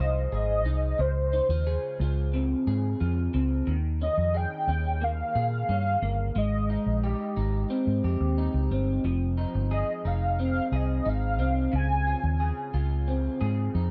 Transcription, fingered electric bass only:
0.00 C2
0.32 G#1
0.66 C2
0.99 C#2
1.49 D#2
2.00 C#2
2.67 G#2
3.01 F2
3.34 C#2
3.67 D#2
4.18 F2
4.67 D#2
5.35 A#2
5.69 G2
6.02 G1
6.36 G#1
6.86 A#1
7.37 G#1
7.87 G#2
8.04 F2
8.21 D#2
8.54 C#2
8.71 G1
9.04 F1
9.55 G1
10.05 F1
10.72 C2
11.06 G#1
11.40 C2
11.73 C#2
12.24 D#2
12.74 C#2
13.41 G#2
13.75 F2

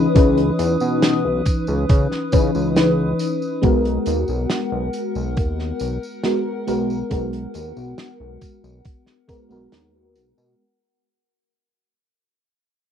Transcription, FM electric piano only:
Already playing: E3 C#4 D#4 B4
0.14 E3 C#4 D#4 B4
2.32 E3 C#4 D#4 B4
2.75 E3 C#4 D#4 B4
3.62 G#3 B3 F#4 A#4
6.24 G#3 B3 F#4 A#4
6.67 G#3 B3 F#4 A#4
7.10 G#3 B3 F#4 A#4
9.28 G#3 B3 F#4 A#4
9.49 G#3 B3 F#4 A#4

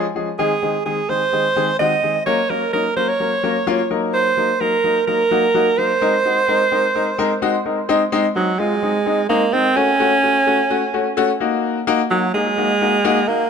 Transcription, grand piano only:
Already playing: G#5
0.15 F3 G#3 C#4 G#4
0.39 D#3 G#3 C4 G#4
0.62 D#3 G#3 C4 G#4
0.86 D#3 G#3 C4 G#4
1.09 D#3 G#3 C4 G#4
1.33 D#3 G#3 C4 G#4
1.56 D#3 G#3 C4 G#4
1.80 D#3 G#3 C4 F#4
2.03 D#3 G#3 C4 G#4
2.26 F#3 A#3 C#4 A#4
2.50 F#3 A#3 C#4 A#4
2.73 F#3 A#3 C#4 D#4
2.97 F#3 A#3 C#4 A#4
3.20 F#3 A#3 C#4 A#4
3.43 F#3 A#3 C#4 A#4
3.67 F#3 A#3 C#4 F4
3.90 F#3 A#3 D#4 A#4
4.37 F#3 A#3 D#4 A#4
4.61 F#3 A#3 D#4 A#4
4.84 F#3 A#3 D#4 A#4
5.08 F#3 A#3 D#4 A#4
5.31 F#3 A#3 D#4 F#4
5.54 F#3 A#3 D#4 F#4
5.78 F#3 A#3 D#4 A#4
6.01 G#3 C4 D#4 A#4
6.25 G#3 C4 D#4 F#4
6.48 G#3 C4 D#4 A#4
6.72 G#3 C4 D#4 A#4
6.95 G#3 C4 D#4 A#4
7.18 G#3 C4 D#4 A#4
7.42 G#3 C4 D#4 F#4
7.65 G#3 C4 D#4 A#4
7.89 G#3 C4 D#4
8.12 G#3 C4 D#4
8.36 G#3 C4 D#4
8.59 G#3 C4 F4
8.83 G#3 C4 D#4
9.06 G#3 C4 D#4
9.29 G#3 C4 D#4
9.53 G#3 C4 D#4
9.76 A3 C#4 F#4
10.00 A3 C#4 F#4
10.23 A3 C#4 F#4
10.47 A3 C#4 F#4
10.70 A3 C#4 F#4
10.94 A3 C#4 F#4
11.17 A3 C#4 F#4
11.40 A#3 D#4 F#4
11.87 A#3 D#4 F#4
12.11 A#3 D#4 F#4
12.34 A#3 D#4 G#4
12.58 A#3 D#4 F#4
12.81 A#3 D#4 F#4
13.05 A#3 D#4 F#4
13.28 A#3 D#4 F#4

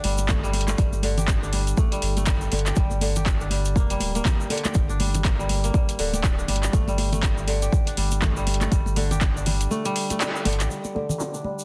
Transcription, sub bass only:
0.04 G1
0.78 G1
2.02 G1
2.52 G1
2.77 G1
3.76 F1
4.01 D1
4.75 G1
5.99 D1
6.49 G1
6.73 G1
7.97 G1
8.72 G1
10.45 G1
10.60 A1

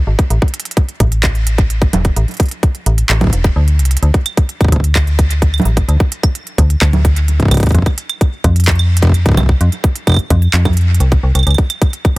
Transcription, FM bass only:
0.07 G#1
0.30 A1
1.00 A1
1.93 E1
2.17 A1
2.86 A1
3.10 A1
3.33 E1
3.56 D2
3.79 C2
4.03 D2
4.72 D2
5.65 A1
5.88 D2
6.58 D2
6.82 D2
7.51 C2
7.74 F2
8.44 F2
9.37 C2
9.61 F2
10.30 F2
10.54 F2
11.00 C2
11.23 C2
11.35 C2
11.47 C#2

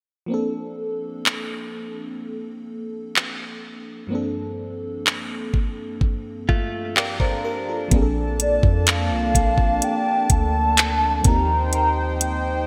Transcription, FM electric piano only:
0.26 F3 A#3 C4
0.32 D4 A4
4.07 G2 F3 A#3
4.12 C4 D4 A4
6.96 A#4 D5 F5
7.21 A4 C5
7.45 G4 A#4 A#5
7.69 F4 A4
7.88 F3 A#3 C4
7.94 D4 G#4
8.02 A4
11.22 F3 A#3 C4
11.27 D#4 G4

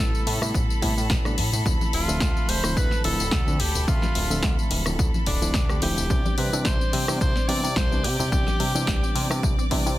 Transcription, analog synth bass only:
0.00 A1
0.27 A2
0.42 A2
0.54 A1
0.82 A2
0.97 A2
1.10 A1
1.38 A2
1.53 A2
1.66 D2
1.93 D1
2.08 D1
2.21 D2
2.49 D1
2.64 D1
2.77 D2
3.05 D1
3.20 D1
3.32 D2
3.60 D1
3.75 D1
3.88 D2
4.16 D1
4.31 D1
4.44 D2
4.71 D1
4.86 D1
4.99 D2
5.27 D1
5.42 D1
5.55 D2
5.82 D1
5.97 D1
6.10 C2
6.38 C3
6.53 C3
6.66 C2
6.93 C3
7.08 C3
7.21 C2
7.48 C3
7.63 C3
7.77 C2
8.04 C3
8.19 C3
8.32 C2
8.60 C3
8.75 C3
8.88 C2
9.15 C3
9.30 C3
9.43 C2
9.71 C3
9.86 C3

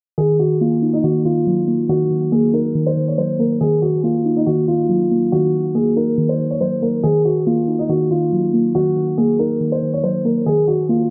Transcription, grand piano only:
0.18 G#4
0.39 F#4
0.61 F4
0.93 D#4
1.04 F#4
1.25 F4
1.89 F#4
2.32 G#4
2.54 A#4
2.87 C5
3.08 C#5
3.18 C5
3.39 A#4
3.61 G#4
3.82 F#4
4.04 F4
4.37 D#4
4.47 F#4
4.68 F4
5.32 F#4
5.75 G#4
5.97 A#4
6.29 C5
6.50 C#5
6.61 C5
6.82 A#4
7.03 G#4
7.25 F#4
7.47 F4
7.79 D#4
7.89 F#4
8.11 F4
8.75 F#4
9.18 G#4
9.39 A#4
9.72 C5
9.93 C#5
10.04 C5
10.25 A#4
10.46 G#4
10.68 F#4
10.89 F4

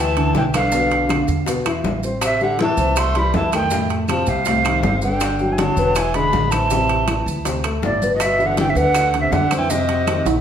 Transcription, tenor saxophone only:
0.00 E3
0.36 E3
0.56 D3
2.23 C3
2.41 D3
2.60 E3
2.98 A3
3.16 G3
3.36 E3
3.54 D#3
4.10 F3
4.29 C3
5.03 D3
5.52 E3
5.59 F#3
5.96 E3
6.15 G#3
6.51 E3
7.84 A2
8.14 B2
8.20 B2
8.45 D3
8.59 E3
8.69 C3
8.77 D3
9.20 C3
9.33 D3
9.57 E3
9.70 C3

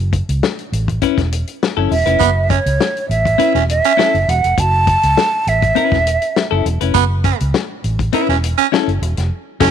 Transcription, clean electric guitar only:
1.02 C#4 E4 B4
1.77 C#4 E4 A4
2.06 C#4 E4 B4
3.38 C#4 E4 B4
3.97 C#4 E4 A4
5.75 C#4 E4 B4
6.51 C#4 E4 A4
6.81 C#4 E4 B4
8.13 C#4 E4 B4
8.72 C#4 E4 A4
9.60 C#4 E4 A4

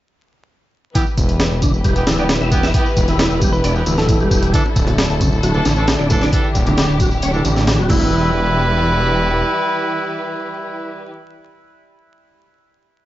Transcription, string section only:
0.95 E3 E4 G4 B4
4.53 D3 D4 A4
6.33 G4
7.89 E3 E4 G4 B4

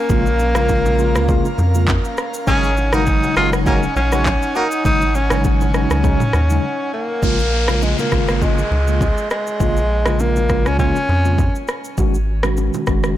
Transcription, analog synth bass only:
0.10 A#1
1.15 C#2
1.58 F2
2.47 G#1
3.37 F#1
3.96 A#1
4.85 G#1
5.91 C#2
6.34 D#2
7.23 A#1
8.12 G#1
8.71 C#2
9.60 A#1
10.66 C#2
11.09 F2
11.98 G#1
12.87 F#1

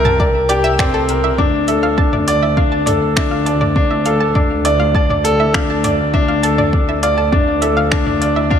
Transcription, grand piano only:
Already playing: C4 G4 A#4
0.20 A#4
0.49 G4
0.79 C4
1.10 A#4
1.39 D4
1.69 A4
1.98 D4
2.28 D5
2.57 D4
2.87 A4
3.16 D4
3.46 D5
3.76 D4
4.06 A4
4.35 D4
4.65 D5
4.95 D5
5.24 A4
5.54 D4
5.84 D5
6.14 D4
6.43 A4
6.74 D4
7.03 D5
7.32 D4
7.62 A4
7.92 D4
8.21 D5
8.50 D4

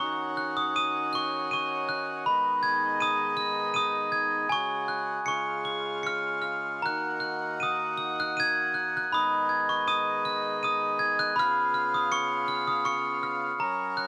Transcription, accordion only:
Already playing: C#4
0.00 D#3 F#4
2.26 G#3 B3 D#4
4.51 C#3 G#3 F#4
5.28 F4
6.84 D#3 A#3 F#4
9.14 G#3 B3 D#4
11.39 C#3 F4
13.60 F#3 C#4 A#4

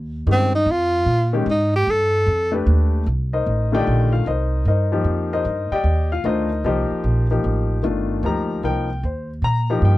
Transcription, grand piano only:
0.27 D#3 G#3 C#4 G4
1.33 D#3 G#3 C#4 G4
2.52 A3 D4 G4 B4
3.33 D#4 A#4 C5 D#5
3.72 D3 D#3 A3 F4 G4 D5 D#5 G5
4.13 F4 F5
4.27 D#4 A#4 C5 D#5
4.68 D#4 A#4 C5 D#5
4.92 F3 A#3 D#4 G4
5.33 D#4 A#4 C5 D#5
5.72 G4 D5 D#5 G5
6.12 F4 F5
6.25 D#3 A3 D4 D#4 F4 A#4 C5 D#5
6.65 F3 A#3 D#4 G4 A#4 C5 D#5
7.31 F3 A#3 D#4 G4
7.83 D#3 A3 D4 F4
8.24 F3 A#3 D#4 G4 A#5
8.63 F3 A#3 D#4 A#4 G5
9.05 C5
9.44 A#5
9.70 F3 A#3 D#4 G4
9.85 G5

